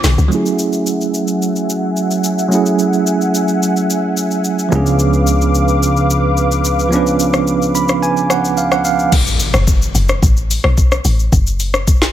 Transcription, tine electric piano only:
0.28 F#3 A3 C#4
0.33 E4 G#4
2.48 F#3 A3 C#4
2.53 E4 G#4
4.69 F3 B3 C#4
4.74 D4 G#4
6.89 F3 B3 C#4
6.94 D4 B4
7.75 B5
8.03 G#5
8.30 F#5
8.57 F5
8.72 F#5
8.85 F5

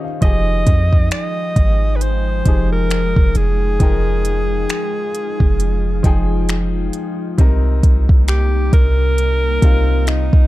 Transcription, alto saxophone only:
0.22 D#5
1.12 D#5
1.96 B4
2.02 C5
2.72 A#4
3.36 G#4
8.28 G4
8.73 A#4
10.08 D#4

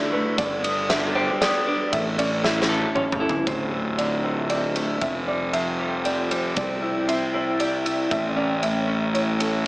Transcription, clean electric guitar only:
Already playing: D2 D3 A3 E4
0.12 A3
0.37 G2
0.64 B3
0.90 D4
1.15 G4
1.41 B3
1.67 D4
1.93 A2
2.19 C#4
2.44 E4
2.69 A4
2.95 C#4
3.20 E4
3.46 D2
3.72 A3
3.98 D3
4.24 A3
4.49 C4
4.76 A3
5.01 F2
5.28 G3
5.53 F3
5.79 G3
6.04 C4
6.31 G3
6.56 C3
6.82 E4
7.08 C4
7.34 E4
7.59 G4
7.85 E4
8.10 A2
8.36 C#4
8.62 A3
8.87 C#4
9.13 E4
9.39 C#4

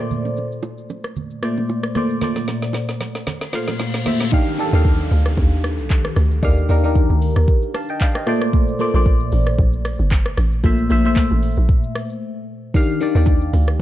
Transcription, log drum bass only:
4.73 D#2
5.11 D2
5.37 D#2
5.78 C2
6.17 D2
6.43 D#2
6.69 D#2
7.10 D2
7.36 D#2
8.94 A#1
9.32 A1
9.59 A#1
9.99 G1
10.38 A1
10.64 A#1
10.90 A#1
11.31 A1
11.57 A#1
13.15 D#2
13.53 D2

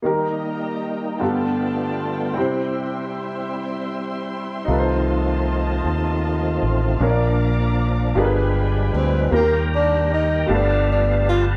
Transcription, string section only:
0.05 A#4 D#5 G5 A#5
1.24 B4 F5 A5
2.37 C5 E5 C6
4.67 D#5 F5 A5
7.00 D5 A#5 D6
8.16 G5 G#5 B5
9.33 D#3 G3 A#3 G4
10.48 G3 A3 B3 F4

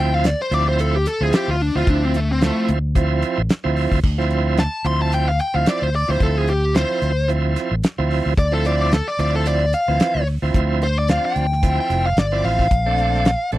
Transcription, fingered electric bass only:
Already playing: D2
0.51 D2
1.21 D2
1.48 D2
1.75 D2
1.87 D2
2.69 D2
3.38 A1
3.50 muted fingered electric bass stroke
3.65 D2
3.92 D2
4.04 D2
4.85 D2
5.55 D2
5.82 D2
6.09 D2
6.20 D2
7.02 D2
7.71 A1
7.84 muted fingered electric bass stroke
7.99 D2
8.26 D2
8.38 D2
9.19 D2
9.88 D2
10.15 D2
10.42 D2
10.54 D2
11.36 D2
11.90 F1
12.17 G1
12.44 A1
12.71 A#1
13.53 A#1

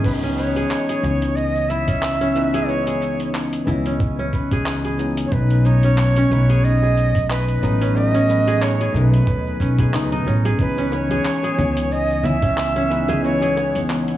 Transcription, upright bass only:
0.04 C#2
1.03 C#2
3.67 C#2
5.32 B1
6.31 B1
7.63 A1
8.94 B1
9.27 D#2
9.60 B1
9.94 C#2
10.26 A1
10.59 C#2
11.58 C#2

